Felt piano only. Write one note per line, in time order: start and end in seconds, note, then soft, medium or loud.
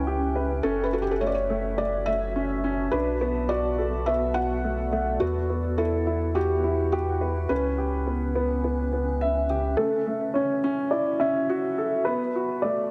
0.63 0.85 A4 medium
0.83 0.93 B4 medium
0.93 1.03 A4 medium
1.02 1.12 G4 medium
1.11 1.21 A4 medium
1.21 1.28 C#5 medium
1.27 1.35 D5 medium
1.34 1.79 C#5 medium
1.78 2.08 D5 medium
2.06 2.95 E5 medium
2.91 3.51 B4 medium
3.49 4.08 D5 medium
4.06 4.36 E5 medium
4.34 5.23 F#5 medium
5.20 5.80 F#4 medium
5.78 6.37 A4 medium
6.35 6.94 G4 medium
6.92 7.51 F#4 medium
7.49 9.46 B4 medium
9.77 10.37 A4 medium
10.34 10.94 C#5 medium
10.91 11.21 D5 medium
11.20 12.09 E5 medium
12.05 12.65 B4 medium
12.62 12.91 D5 medium